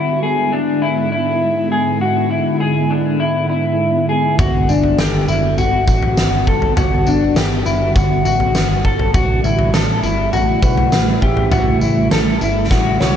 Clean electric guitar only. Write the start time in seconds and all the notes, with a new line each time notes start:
Already playing: E4
0.23 G#4
0.52 D4
0.82 E4
1.12 E4
1.72 G#4
2.01 F#4
2.31 E4
2.60 G#4
2.90 D4
3.20 E4
3.50 E4
4.09 G#4
4.39 F#4
4.69 D4
4.98 G4
5.28 E4
5.58 F#4
5.88 F#4
6.47 A4
6.77 F#4
7.07 D4
7.36 G4
7.66 E4
7.95 F#4
8.25 F#4
8.85 A4
9.14 F#4
9.44 E4
9.74 A4
10.03 E4
10.33 F#4
10.63 F#4
11.22 G4
11.52 F#4
11.81 E4
12.11 A4
12.41 E4
12.71 F#4
13.01 F#4